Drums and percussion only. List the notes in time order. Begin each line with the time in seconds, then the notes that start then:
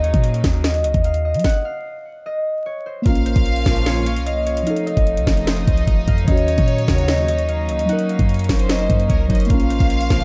0.04 closed hi-hat
0.14 kick, closed hi-hat
0.24 closed hi-hat
0.34 closed hi-hat
0.44 kick, snare, closed hi-hat
0.64 snare, closed hi-hat
0.74 closed hi-hat
0.84 closed hi-hat
0.94 kick, closed hi-hat
1.04 closed hi-hat
1.14 closed hi-hat
1.34 closed hi-hat
1.39 closed hi-hat
1.44 kick, snare, closed hi-hat
1.49 closed hi-hat
3.06 kick, closed hi-hat
3.15 closed hi-hat
3.26 closed hi-hat
3.36 kick, closed hi-hat
3.46 closed hi-hat
3.56 closed hi-hat
3.66 kick, snare
3.76 closed hi-hat
3.86 snare, closed hi-hat
4.06 closed hi-hat
4.16 closed hi-hat
4.27 closed hi-hat
4.47 closed hi-hat
4.57 closed hi-hat
4.67 closed hi-hat
4.76 closed hi-hat
4.87 closed hi-hat
4.97 kick, closed hi-hat
5.07 closed hi-hat
5.17 closed hi-hat
5.27 kick, snare
5.37 closed hi-hat
5.47 snare, closed hi-hat
5.67 kick, closed hi-hat
5.77 closed hi-hat
5.87 kick, closed hi-hat
6.08 kick, closed hi-hat
6.18 closed hi-hat
6.28 kick, closed hi-hat
6.37 closed hi-hat
6.48 closed hi-hat
6.58 kick, closed hi-hat
6.68 closed hi-hat
6.78 closed hi-hat
6.88 kick, snare
6.98 closed hi-hat
7.08 snare, closed hi-hat
7.28 closed hi-hat
7.38 closed hi-hat
7.49 closed hi-hat
7.69 closed hi-hat
7.79 closed hi-hat
7.89 closed hi-hat
7.99 closed hi-hat
8.09 closed hi-hat
8.19 kick, closed hi-hat
8.29 closed hi-hat
8.34 closed hi-hat
8.39 closed hi-hat
8.44 closed hi-hat
8.49 kick, snare, open hi-hat
8.59 closed hi-hat
8.69 snare, closed hi-hat
8.90 kick, closed hi-hat
9.00 closed hi-hat
9.10 kick, closed hi-hat
9.30 kick, closed hi-hat
9.35 closed hi-hat
9.40 closed hi-hat
9.45 closed hi-hat
9.50 kick, closed hi-hat
9.60 closed hi-hat
9.70 closed hi-hat
9.80 kick, closed hi-hat
9.90 closed hi-hat
10.01 closed hi-hat
10.10 kick, snare
10.21 closed hi-hat